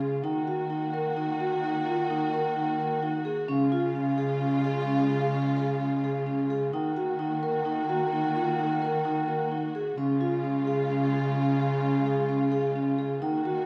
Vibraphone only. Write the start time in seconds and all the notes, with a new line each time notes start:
0.01 G#4
0.24 D#4
0.47 F#4
0.70 D#4
0.94 A#4
1.17 D#4
1.40 F#4
1.64 D#4
1.87 F4
2.10 D#4
2.33 A#4
2.56 D#4
2.80 A#4
3.03 D#4
3.25 G#4
3.48 C#4
3.72 F4
3.95 C#4
4.18 G#4
4.41 C#4
4.64 G#4
4.87 C#4
5.10 G#4
5.34 C#4
5.57 G#4
5.80 C#4
6.04 G#4
6.27 C#4
6.50 G#4
6.73 D#4
6.96 F#4
7.19 D#4
7.43 A#4
7.65 D#4
7.89 F#4
8.12 D#4
8.36 F4
8.59 D#4
8.82 A#4
9.05 D#4
9.28 A#4
9.52 D#4
9.75 G#4
9.98 C#4
10.21 F4
10.44 C#4
10.67 G#4
10.90 C#4
11.13 G#4
11.36 C#4
11.59 G#4
11.82 C#4
12.06 G#4
12.29 C#4
12.52 G#4
12.76 C#4
12.99 G#4
13.22 D#4
13.45 F#4